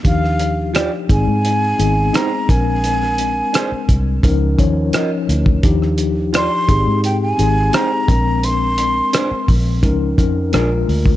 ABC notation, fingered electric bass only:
X:1
M:4/4
L:1/16
Q:1/4=86
K:Eb
V:1 name="Fingered electric bass" clef=bass
E,,4- E,, z A,,, A,,3 A,,,2 z2 B,,,2- | B,,,4 z2 C,,2 _D,,2 E,,2 z2 =D,,2 | E,,4- E,, z A,,, A,,3 A,,,2 z2 B,,,2- | B,,,4 z2 B,,,2 _D,,2 F,,2 B,,,2 =D,,2 |]